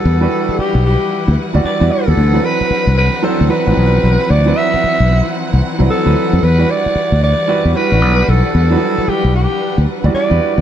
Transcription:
Already playing: string section E3 G3 B4 F#5, grand piano G3 D4 E4 F#4 A#4 B4, alto saxophone A4
0.05 fingered electric bass E2, string section E4
0.21 grand piano G3 D4 E4 F#4 B4
0.49 muted fingered electric bass stroke
0.59 alto saxophone G4, muted fingered electric bass stroke
0.75 fingered electric bass B1
0.86 alto saxophone G4
1.28 fingered electric bass D2
1.54 fingered electric bass D2, grand piano G3 D4 E4 F#4 D5
1.65 alto saxophone D5, muted fingered electric bass stroke
1.80 fingered electric bass E2, grand piano G3 D4 E4 F#4 D5
1.92 alto saxophone A4
2.08 fingered electric bass D#2
2.17 fingered electric bass D2, string section C4 D4
2.33 grand piano F#3 C4 D4 E4 B4
2.44 alto saxophone B4
2.61 muted fingered electric bass stroke
2.70 muted fingered electric bass stroke
2.87 fingered electric bass C2
2.98 alto saxophone B4
3.22 grand piano F#3 C4 D4 E4 C5, alto saxophone A4
3.41 fingered electric bass D2
3.49 grand piano F#3 C4 D4 E4 B4, alto saxophone B4
3.66 fingered electric bass A1, grand piano F3 C4 D4 E4 B4
3.72 grand piano F#3
3.77 fingered electric bass B1
4.04 fingered electric bass B1
4.30 fingered electric bass D2, string section E4, alto saxophone D5
4.46 grand piano F#3 C4 D4 E4 B4
4.57 alto saxophone E5
4.74 muted fingered electric bass stroke
4.84 muted fingered electric bass stroke
5.00 fingered electric bass B1
5.53 fingered electric bass C2
5.79 fingered electric bass C2, grand piano F#3 C4 D4 E4 B4
5.90 alto saxophone A4
6.05 fingered electric bass D2, grand piano F#3 C4 D4 E4 B4
6.33 fingered electric bass F2
6.42 fingered electric bass E2, string section G3 D4 B4, alto saxophone B4
6.58 grand piano G3 D4 E4 F#4 B4
6.70 alto saxophone D5
6.86 muted fingered electric bass stroke
6.95 muted fingered electric bass stroke
7.12 fingered electric bass D2
7.24 alto saxophone D5
7.48 grand piano G3 D4 E4 F#4 B4
7.65 fingered electric bass E2
7.74 grand piano G3 D4 E4 F#4 B4, alto saxophone B4
7.91 fingered electric bass A1, grand piano G3 D4 E4 F#4 B4
8.02 fingered electric bass B1
8.28 fingered electric bass B1, alto saxophone A4
8.55 fingered electric bass E2
8.70 grand piano F#3 D4 E4 F#4 B4
8.77 grand piano G3
8.98 muted fingered electric bass stroke
9.08 alto saxophone G4, muted fingered electric bass stroke
9.24 fingered electric bass B1
9.35 alto saxophone G4
9.78 fingered electric bass D2
10.04 fingered electric bass D2, grand piano G3 D4 E4 F#4 D5
10.14 alto saxophone D5, muted fingered electric bass stroke
10.30 fingered electric bass E2, grand piano G3 D4 E4 F#4 B4
10.58 fingered electric bass D#2

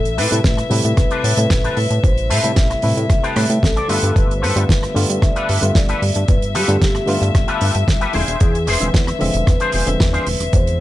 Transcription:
Already playing: analog synth bass A1, string section E5
0.05 closed hi-hat
0.17 analog synth bass A2, clean electric guitar C4 G4 A4 B4, vibraphone B4, open hi-hat
0.31 analog synth bass A2, reed electric piano C3 G3 A3 E4 B4, closed hi-hat
0.44 analog synth bass A1, kick, snare, closed hi-hat
0.57 muted clean electric guitar stroke, cross-stick, closed hi-hat
0.70 analog synth bass A2, reed electric piano C3 G3 A3 E4 B4, muted clean electric guitar stroke, open hi-hat
0.85 analog synth bass A2, closed hi-hat
0.97 analog synth bass A1, vibraphone B4, kick, cross-stick, closed hi-hat
1.11 clean electric guitar C4 G4 A4 B4, closed hi-hat
1.24 analog synth bass A2, open hi-hat
1.37 analog synth bass A2, reed electric piano C3 G3 A3 E4 B4, closed hi-hat
1.50 analog synth bass A1, kick, snare, closed hi-hat
1.64 clean electric guitar C4 G4 A4 B4, closed hi-hat
1.77 analog synth bass A2, open hi-hat
1.90 analog synth bass A2, muted clean electric guitar stroke, closed hi-hat
2.04 analog synth bass A1, vibraphone C5, kick, closed hi-hat
2.17 closed hi-hat
2.29 analog synth bass A2, clean electric guitar C4 G4 A4 B4, vibraphone E5, open hi-hat
2.43 analog synth bass A2, reed electric piano C3 G3 A3 E4 B4, closed hi-hat
2.56 analog synth bass A1, kick, snare, closed hi-hat
2.70 muted clean electric guitar stroke, cross-stick, closed hi-hat
2.82 analog synth bass A2, reed electric piano C3 G3 A3 E4 B4, muted clean electric guitar stroke, open hi-hat
2.97 analog synth bass A2, closed hi-hat
3.10 analog synth bass A1, kick, cross-stick, closed hi-hat
3.23 clean electric guitar C4 G4 A4 B4, closed hi-hat
3.36 analog synth bass A2, reed electric piano C3 G3 A3 A4 B4, cross-stick, open hi-hat
3.50 analog synth bass A2, closed hi-hat
3.63 analog synth bass A1, vibraphone A4, kick, snare, closed hi-hat
3.76 clean electric guitar C4 G4 A4 D5, closed hi-hat
3.88 analog synth bass G2, reed electric piano D3 G3 A3 B3 F4, clean electric guitar F4 G4 A4 B4, open hi-hat
4.03 analog synth bass G2, closed hi-hat
4.16 analog synth bass G1, vibraphone B4, string section E5, kick, closed hi-hat
4.31 closed hi-hat
4.36 vibraphone C5
4.42 analog synth bass G2, clean electric guitar F4 G4 A4 B4, vibraphone B4, open hi-hat
4.56 analog synth bass G2, reed electric piano D3 G3 A3 B3 F4, closed hi-hat
4.69 analog synth bass G1, kick, snare, closed hi-hat
4.83 muted clean electric guitar stroke, cross-stick, closed hi-hat
4.94 analog synth bass G2, reed electric piano D3 G3 A3 B3 F4, muted clean electric guitar stroke, open hi-hat
5.09 analog synth bass G2, closed hi-hat
5.22 analog synth bass G1, vibraphone E5, kick, cross-stick, closed hi-hat
5.29 vibraphone D5
5.35 clean electric guitar F4 G4 A4 B4, vibraphone E5, closed hi-hat
5.49 analog synth bass G2, open hi-hat
5.61 analog synth bass G2, reed electric piano D3 G3 A3 B3 F4, closed hi-hat
5.75 analog synth bass G1, vibraphone D5, kick, snare, closed hi-hat
5.88 clean electric guitar F4 G4 A4 B4, closed hi-hat
6.02 analog synth bass G2, open hi-hat
6.15 analog synth bass G2, muted clean electric guitar stroke, closed hi-hat
6.28 analog synth bass G1, vibraphone B4, kick, closed hi-hat
6.42 closed hi-hat
6.54 analog synth bass G2, clean electric guitar F4 G4 A4 B4, vibraphone G4, open hi-hat
6.68 analog synth bass G2, reed electric piano D3 G3 A3 B3 F4, closed hi-hat
6.82 analog synth bass G1, kick, snare, closed hi-hat
6.95 muted clean electric guitar stroke, cross-stick, closed hi-hat
7.06 analog synth bass G2, reed electric piano D3 G3 A3 B3 F4, muted clean electric guitar stroke, open hi-hat
7.22 analog synth bass G2, closed hi-hat
7.35 analog synth bass G1, kick, cross-stick, closed hi-hat
7.47 clean electric guitar F4 G4 A4 B4, closed hi-hat
7.61 analog synth bass G2, open hi-hat
7.75 analog synth bass G2, closed hi-hat
7.88 analog synth bass G1, kick, snare, closed hi-hat
8.01 clean electric guitar F4 G4 A4 B4, closed hi-hat
8.13 analog synth bass E1, reed electric piano D3 F3 G#3 C4 E4, clean electric guitar D4 F4 G#4 C5, open hi-hat
8.28 analog synth bass E1, closed hi-hat
8.40 analog synth bass E2, vibraphone G#4, kick, closed hi-hat
8.55 closed hi-hat
8.67 analog synth bass E1, clean electric guitar D4 F4 G#4 C5, vibraphone B4, open hi-hat
8.80 analog synth bass E1, reed electric piano D3 F3 G#3 C4 E5, closed hi-hat
8.94 analog synth bass E2, kick, snare, closed hi-hat
9.07 muted clean electric guitar stroke, cross-stick, closed hi-hat
9.19 analog synth bass E1, reed electric piano D3 F3 G#3 C4 E5, muted clean electric guitar stroke, open hi-hat
9.34 analog synth bass E1, closed hi-hat
9.47 analog synth bass E2, vibraphone B4, kick, cross-stick, closed hi-hat
9.60 clean electric guitar D4 F4 G#4 C5, closed hi-hat
9.72 analog synth bass E1, open hi-hat
9.86 analog synth bass E1, reed electric piano D3 F3 G#3 C4 E5, closed hi-hat
10.00 analog synth bass E2, kick, snare, closed hi-hat
10.13 clean electric guitar D4 F4 G#4 C5, closed hi-hat
10.26 analog synth bass E1, open hi-hat
10.40 analog synth bass E1, muted clean electric guitar stroke, closed hi-hat
10.53 analog synth bass E2, vibraphone C5, kick, closed hi-hat
10.67 closed hi-hat

